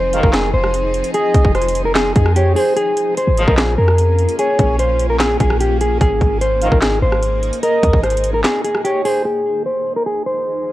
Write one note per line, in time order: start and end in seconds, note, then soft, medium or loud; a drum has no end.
0.00 0.21 F1 loud
0.00 2.73 F3 medium
0.00 2.73 C4 medium
0.00 2.73 D#4 medium
0.00 5.97 G#4 medium
0.00 0.21 C5 medium
0.13 0.52 C2 medium
0.13 0.52 G#2 medium
0.13 0.52 D#3 loud
0.13 0.32 F5 medium
0.13 closed hi-hat medium
0.23 0.52 F1 loud
0.23 0.33 A#4 medium
0.23 kick loud
0.33 0.52 G#4 medium
0.33 snare loud
0.33 clap loud
0.33 closed hi-hat medium
0.54 1.02 F1 loud
0.54 1.11 C5 medium
0.64 cross-stick medium
0.74 closed hi-hat medium
0.94 closed hi-hat soft
1.04 closed hi-hat medium
1.14 1.53 G#4 loud
1.14 1.53 D#5 loud
1.14 closed hi-hat medium
1.35 1.44 C2 loud
1.35 kick loud
1.35 closed hi-hat medium
1.45 2.13 F1 loud
1.45 kick loud
1.55 1.84 C5 medium
1.55 cross-stick medium
1.55 closed hi-hat soft
1.62 closed hi-hat medium
1.69 closed hi-hat medium
1.75 closed hi-hat medium
1.85 1.94 A#4 medium
1.95 2.14 G#4 loud
1.95 snare loud
1.95 clap loud
1.95 closed hi-hat medium
2.16 2.55 F2 loud
2.16 2.34 G#4 medium
2.16 kick loud
2.16 closed hi-hat medium
2.26 cross-stick loud
2.36 2.54 G4 loud
2.36 2.55 C#5 medium
2.36 closed hi-hat medium
2.56 2.74 G#4 medium
2.56 2.76 C5 medium
2.56 open hi-hat medium
2.77 9.21 A#3 medium
2.77 5.98 C#4 medium
2.77 5.98 F4 medium
2.77 3.15 G#4 loud
2.77 closed hi-hat medium
2.97 closed hi-hat medium
3.17 3.46 C5 medium
3.17 closed hi-hat medium
3.27 3.47 G#1 loud
3.37 3.76 C#2 loud
3.37 3.76 A#2 loud
3.37 3.76 F3 loud
3.37 3.57 D#5 medium
3.37 closed hi-hat medium
3.48 3.77 A#1 loud
3.48 3.57 A#4 medium
3.48 kick loud
3.57 3.76 G#4 medium
3.57 snare loud
3.57 clap loud
3.57 closed hi-hat medium
3.78 4.27 F2 loud
3.78 4.35 A#4 medium
3.88 cross-stick medium
3.98 closed hi-hat medium
4.18 closed hi-hat soft
4.29 closed hi-hat medium
4.39 4.77 G#4 medium
4.39 4.77 C#5 loud
4.39 closed hi-hat medium
4.59 5.37 A#1 loud
4.59 kick loud
4.59 closed hi-hat medium
4.79 5.08 C5 medium
4.79 closed hi-hat medium
5.00 closed hi-hat medium
5.10 5.19 A#4 medium
5.19 5.38 G#4 medium
5.19 snare loud
5.19 clap loud
5.19 closed hi-hat medium
5.40 5.99 A#1 loud
5.40 5.58 G#4 medium
5.40 kick medium
5.40 closed hi-hat medium
5.50 cross-stick loud
5.60 5.79 G4 medium
5.60 closed hi-hat medium
5.81 5.99 G#4 medium
5.81 closed hi-hat medium
6.01 6.20 G#1 loud
6.01 9.22 D#4 medium
6.01 6.39 G#4 loud
6.01 9.22 G#4 medium
6.01 kick loud
6.01 closed hi-hat medium
6.21 6.70 G#1 loud
6.21 kick loud
6.21 closed hi-hat medium
6.41 6.70 C5 medium
6.41 closed hi-hat medium
6.62 7.00 A#1 medium
6.62 7.00 G#2 loud
6.62 7.00 D#3 loud
6.62 6.81 F5 medium
6.62 closed hi-hat medium
6.72 7.01 G#1 loud
6.72 6.81 A#4 medium
6.72 kick loud
6.82 7.00 G#4 medium
6.82 snare loud
6.82 clap loud
6.82 closed hi-hat medium
7.02 7.51 G#1 loud
7.02 7.60 C5 medium
7.12 cross-stick medium
7.23 closed hi-hat medium
7.43 closed hi-hat soft
7.53 closed hi-hat medium
7.63 8.01 A#4 medium
7.63 8.01 D#5 loud
7.63 closed hi-hat medium
7.83 7.93 D#2 loud
7.83 kick loud
7.83 closed hi-hat medium
7.93 8.42 G#1 loud
7.93 kick loud
8.04 8.32 C5 medium
8.04 cross-stick medium
8.04 closed hi-hat soft
8.10 closed hi-hat medium
8.17 closed hi-hat medium
8.24 closed hi-hat medium
8.34 8.43 A#4 medium
8.44 8.62 G#4 medium
8.44 snare loud
8.44 clap loud
8.44 closed hi-hat medium
8.64 8.82 G#4 medium
8.64 closed hi-hat medium
8.75 cross-stick medium
8.84 9.03 G4 medium
8.84 9.04 C#5 medium
8.84 closed hi-hat medium
9.05 9.23 G#4 medium
9.05 9.24 C5 medium
9.05 open hi-hat medium
9.25 10.72 F2 medium
9.25 10.72 F3 medium
9.25 10.72 D#4 medium
9.25 9.63 G#4 loud
9.25 10.72 G#4 medium
9.66 9.94 C5 medium
9.96 10.05 A#4 medium
10.06 10.24 G#4 medium
10.26 10.72 C5 medium